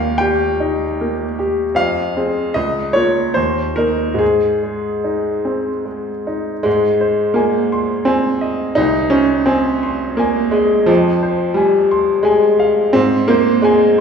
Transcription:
Already playing: D#2 A#3 F5 G5
0.18 G4 G5
0.60 D#4
1.01 A#3
1.39 G4
1.75 F2 F5
2.17 C4 G#4
2.54 C#2 D#5
2.93 A#3 F4 C#5
3.34 D#2 C5
3.76 A#3 D#4 A#4
4.14 G#2
4.19 G#4
4.63 G#3
5.04 D#4
5.45 C4
5.85 G#3
6.27 D#4
6.63 G#2 G#3
7.01 C5
7.34 A#3 G#5
7.72 C6
8.05 C4 G#5
8.41 D#5
8.75 C2 D#4
9.10 C#4 C5
9.46 C4 G#5
9.83 C6
10.17 A#3 G#5
10.51 G#3 D#5
10.86 F2 F3
11.23 C5
11.54 G3 G#5
11.91 C6
12.23 G#3 G#5
12.59 F5
12.93 G#2 C4
13.28 A#3 C5
13.62 G#3 G#5

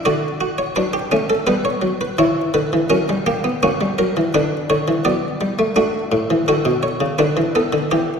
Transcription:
0.05 D3 F#4 D5
0.41 F#4
0.58 C#5
0.76 F#3 D4 B4
0.93 G4
1.12 A3 C#4
1.30 A4
1.47 G3 B3 B4
1.65 C#5
1.82 F#3
2.01 B4
2.19 E3 E4 C#5
2.54 D3 B4
2.73 E3
2.90 F#3 C#4 A#4
3.09 G3
3.26 A#3 G4
3.44 B3
3.63 A#3 C#4 F#4
3.81 G3
3.98 F#3 A#4
4.17 E3
4.34 D3 D4 B4
4.70 D3 C#5
4.88 E3
5.05 F#3 B3 D5
5.41 G3
5.59 A3
5.76 A3 D4 F#4
6.12 A2
6.30 E3
6.48 D3 F#4 A4
6.65 B2
6.83 C#5
7.00 C#3
7.19 D3 D4 B4
7.37 E3
7.55 B3 A4
7.73 D3
7.91 E3 G4

